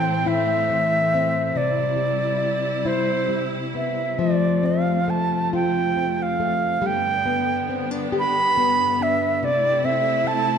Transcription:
Already playing: string section A2 E3 C4, nylon-string guitar A2 A3 C4 E4, flute G5
0.26 nylon-string guitar E4, flute E5
0.70 nylon-string guitar A3
1.14 nylon-string guitar C4
1.53 string section C3 G3 E4, nylon-string guitar C3, flute D5
1.96 nylon-string guitar G3
2.85 nylon-string guitar E4, flute C5
3.28 nylon-string guitar G3
3.75 nylon-string guitar B3, flute E5
4.16 string section F2 A3, nylon-string guitar F3, flute D5
4.63 nylon-string guitar C4, flute F5
5.08 nylon-string guitar A3, flute A5
5.53 nylon-string guitar F4, flute G5
5.97 nylon-string guitar C4
6.22 flute F5
6.40 nylon-string guitar A3
6.82 string section G2 D3 B3, nylon-string guitar G3
6.86 flute G5
7.26 nylon-string guitar B3
7.69 nylon-string guitar C4
7.91 nylon-string guitar D4
8.12 nylon-string guitar G4
8.19 flute B5
8.57 nylon-string guitar B3
9.00 nylon-string guitar D4, flute E5
9.41 string section C3 A3 E4, nylon-string guitar C3, flute D5
9.84 nylon-string guitar C4, flute E5
10.24 nylon-string guitar A3, flute A5

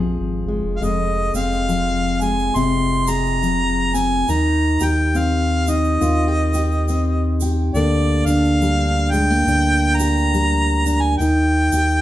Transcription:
Already playing: sub bass A#1, steel-string acoustic guitar F2 F3 G#3 C4 G#4
0.20 sub bass G#1
0.46 sub bass G1, steel-string acoustic guitar G#3
0.63 sub bass F1
0.76 harmonica F5
0.81 sub bass F1, steel-string acoustic guitar F2 G#3, harmonica D#5, shaker
1.33 sub bass F1, steel-string acoustic guitar C4, harmonica F5, shaker
1.52 shaker
1.68 steel-string acoustic guitar F3, shaker
2.21 steel-string acoustic guitar G#3, harmonica G#5, shaker
2.39 shaker
2.55 sub bass F1, steel-string acoustic guitar C3 C4, harmonica C6, shaker
3.07 steel-string acoustic guitar G#4, harmonica A#5, shaker
3.25 shaker
3.42 steel-string acoustic guitar F3, shaker
3.94 steel-string acoustic guitar C4, harmonica G#5, shaker
4.28 sub bass D#2, steel-string acoustic guitar D#3 D#4, harmonica A#5, shaker
4.80 sub bass D#2, steel-string acoustic guitar G4, shaker
4.84 harmonica G5
5.15 steel-string acoustic guitar C4, harmonica F5, shaker
5.67 steel-string acoustic guitar D#4, harmonica D#5, shaker
5.84 shaker
6.01 sub bass D#2, steel-string acoustic guitar D#3 F4, shaker
6.28 steel-string acoustic guitar G4
6.54 steel-string acoustic guitar G4, shaker
6.72 shaker
6.88 steel-string acoustic guitar C4, shaker
7.41 steel-string acoustic guitar G4, shaker
7.74 sub bass D2, steel-string acoustic guitar D3 A#3, harmonica D5, shaker
8.25 sub bass D2, steel-string acoustic guitar D4, harmonica F5, shaker
8.44 shaker
8.62 steel-string acoustic guitar G3, shaker
9.11 steel-string acoustic guitar G#3, harmonica G5, shaker
9.30 steel-string acoustic guitar A#3, shaker
9.47 sub bass D2, steel-string acoustic guitar D3 D4, shaker
9.96 steel-string acoustic guitar G4, harmonica A#5, shaker
10.17 shaker
10.34 steel-string acoustic guitar G3, shaker
10.86 steel-string acoustic guitar D4, shaker
11.01 harmonica G#5
11.18 sub bass D#2, steel-string acoustic guitar D#3 D#4, harmonica G5, shaker
11.72 sub bass D#2, steel-string acoustic guitar G4, shaker
11.90 shaker

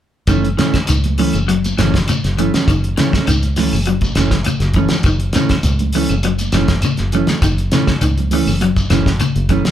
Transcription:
0.27 fingered electric bass F#1, clean electric guitar D#3 E3 A3 C#4, kick, closed hi-hat, claves, shekere
0.45 closed hi-hat
0.58 clean electric guitar C#3 E3 A3 C#4, snare, closed hi-hat, high conga, shekere
0.74 kick, snare, closed hi-hat, claves, shekere
0.87 fingered electric bass C#2, clean electric guitar D#3, closed hi-hat, high conga, shekere
1.04 closed hi-hat, high conga, low conga
1.18 clean electric guitar E3 A3 C#4, open hi-hat, high conga, low conga, shekere
1.33 fingered electric bass F#1, closed hi-hat, claves, shekere
1.48 clean electric guitar F#3, closed hi-hat, high conga
1.64 closed hi-hat, high conga, shekere
1.78 fingered electric bass F#1, clean electric guitar E3 A3 C#4, snare, closed hi-hat, claves, shekere
1.94 kick, snare, closed hi-hat, shekere
2.08 clean electric guitar C#3, closed hi-hat, high conga, claves, shekere
2.24 fingered electric bass F#1, snare, closed hi-hat
2.38 clean electric guitar E3 A3 C#4, closed hi-hat, low conga, shekere
2.54 clean electric guitar A3 C#4, muted fingered electric bass stroke, snare, closed hi-hat, high conga, shekere
2.68 fingered electric bass F#1, clean electric guitar D#3, kick, closed hi-hat, claves, shekere
2.84 closed hi-hat
2.97 clean electric guitar C#3 E3 A3 C#4, snare, closed hi-hat, high conga, shekere
3.13 clean electric guitar A3 C#4, kick, snare, claves, shekere
3.27 fingered electric bass C#2, clean electric guitar D#3, closed hi-hat, high conga, shekere
3.43 closed hi-hat
3.56 clean electric guitar E3 A3 C#4, snare, open hi-hat, high conga, low conga, shekere
3.73 fingered electric bass F#1, claves, shekere
3.86 clean electric guitar F#3, closed hi-hat, high conga
4.01 kick, closed hi-hat, high conga, shekere
4.15 fingered electric bass F#1, clean electric guitar E3 A3 C#4, snare, closed hi-hat, claves, shekere
4.31 kick, snare, shekere
4.44 clean electric guitar C#3, closed hi-hat, high conga, claves, shekere
4.60 fingered electric bass F#1, snare, closed hi-hat
4.74 clean electric guitar E3 A3, kick, closed hi-hat, low conga
4.78 clean electric guitar C#4, shekere
4.89 muted fingered electric bass stroke, snare, closed hi-hat, high conga, shekere
5.03 fingered electric bass F#1, clean electric guitar D#3, kick, closed hi-hat, claves, shekere
5.20 closed hi-hat
5.33 clean electric guitar C#3 E3 A3 C#4, snare, closed hi-hat, high conga, shekere
5.49 kick, snare, closed hi-hat, claves, shekere
5.63 fingered electric bass C#2, closed hi-hat, high conga, shekere
5.79 closed hi-hat, high conga, low conga
5.93 clean electric guitar E3 A3 C#4, open hi-hat, high conga, low conga, shekere
6.09 fingered electric bass F#1, closed hi-hat, claves, shekere
6.23 clean electric guitar F#3, closed hi-hat, high conga
6.39 closed hi-hat, high conga, shekere
6.52 fingered electric bass F#1, clean electric guitar E3 A3 C#4, snare, closed hi-hat, claves, shekere
6.68 kick, snare, closed hi-hat, shekere
6.82 clean electric guitar C#3, closed hi-hat, high conga, claves, shekere
6.97 fingered electric bass F#1, snare, closed hi-hat
7.12 clean electric guitar E3 A3 C#4, closed hi-hat, low conga, shekere
7.27 clean electric guitar A3, muted clean electric guitar stroke, snare, closed hi-hat, high conga, shekere
7.42 fingered electric bass F#1, clean electric guitar D#3, kick, closed hi-hat, claves, shekere
7.58 closed hi-hat
7.72 clean electric guitar C#3 E3 A3 C#4, snare, closed hi-hat, high conga, shekere
7.87 kick, snare, claves, shekere
8.01 fingered electric bass C#2, clean electric guitar D#3, closed hi-hat, high conga, shekere
8.18 closed hi-hat, high conga, low conga
8.31 clean electric guitar E3 A3 C#4, open hi-hat, high conga, low conga, shekere
8.47 fingered electric bass F#1, claves, shekere
8.61 clean electric guitar F#3, closed hi-hat, high conga
8.76 kick, closed hi-hat, shekere
8.90 fingered electric bass F#1, clean electric guitar E3 A3 C#4, snare, closed hi-hat, claves, shekere
9.06 kick, snare, shekere
9.20 clean electric guitar C#3, closed hi-hat, high conga, claves, shekere
9.36 fingered electric bass F#1, closed hi-hat
9.49 clean electric guitar E3 A3 C#4, kick, closed hi-hat, low conga, shekere
9.65 clean electric guitar A3 C#4, snare, closed hi-hat, shekere

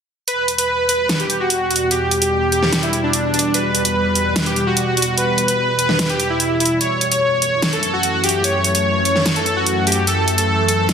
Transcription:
0.28 ambient pad E2 B2 G3, supersaw synth B4, closed hi-hat
0.48 closed hi-hat
0.58 supersaw synth B4, closed hi-hat
0.89 supersaw synth B4, closed hi-hat
1.09 snare, closed hi-hat
1.20 supersaw synth G4, closed hi-hat
1.30 closed hi-hat
1.40 supersaw synth F#4
1.50 closed hi-hat
1.71 supersaw synth F#4, closed hi-hat
1.76 closed hi-hat
1.91 supersaw synth G4, closed hi-hat
2.11 closed hi-hat
2.22 supersaw synth G4, closed hi-hat
2.52 supersaw synth G4, closed hi-hat
2.63 snare
2.73 snare, closed hi-hat
2.83 supersaw synth E4, closed hi-hat
2.93 closed hi-hat
3.03 supersaw synth D4
3.13 closed hi-hat
3.34 supersaw synth D4, closed hi-hat
3.39 closed hi-hat
3.54 supersaw synth B4, closed hi-hat
3.75 closed hi-hat
3.85 supersaw synth B4, closed hi-hat
4.15 supersaw synth B4, closed hi-hat
4.36 snare, closed hi-hat
4.46 supersaw synth G4, closed hi-hat
4.56 closed hi-hat
4.67 supersaw synth F#4
4.77 closed hi-hat
4.97 supersaw synth F#4, closed hi-hat
5.02 closed hi-hat
5.18 supersaw synth B4, closed hi-hat
5.38 closed hi-hat
5.48 supersaw synth B4, closed hi-hat
5.79 supersaw synth B4, closed hi-hat
5.89 snare
5.99 snare, closed hi-hat
6.09 supersaw synth G4, closed hi-hat
6.20 closed hi-hat
6.30 supersaw synth E4
6.40 closed hi-hat
6.60 supersaw synth E4, closed hi-hat
6.66 closed hi-hat
6.81 ambient pad F#2 E3 A3, supersaw synth C#5, closed hi-hat
7.01 closed hi-hat
7.11 supersaw synth C#5, closed hi-hat
7.42 supersaw synth C#5, closed hi-hat
7.62 snare, closed hi-hat
7.73 supersaw synth A4, closed hi-hat
7.83 closed hi-hat
7.93 supersaw synth F#4
8.03 closed hi-hat
8.24 supersaw synth G4, closed hi-hat
8.29 closed hi-hat
8.44 supersaw synth C#5, closed hi-hat
8.64 closed hi-hat
8.75 supersaw synth C#5, closed hi-hat
9.05 supersaw synth C#5, closed hi-hat
9.16 snare
9.26 snare, closed hi-hat
9.36 supersaw synth A4, closed hi-hat
9.46 closed hi-hat
9.57 supersaw synth F#4
9.66 closed hi-hat
9.87 supersaw synth G4, closed hi-hat
9.92 closed hi-hat
10.07 supersaw synth A4, closed hi-hat
10.28 closed hi-hat
10.38 supersaw synth A4, closed hi-hat
10.69 supersaw synth A4, closed hi-hat
10.89 snare, closed hi-hat

